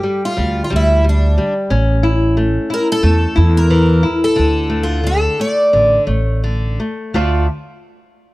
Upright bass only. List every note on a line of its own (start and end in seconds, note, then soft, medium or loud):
0.38 0.60 D2 loud
0.72 1.36 D2 loud
1.71 2.56 A1 loud
3.03 3.25 E2 loud
3.37 4.02 E2 loud
4.39 5.26 D2 loud
5.74 5.96 A1 medium
6.07 6.77 A1 medium
7.14 7.46 D2 medium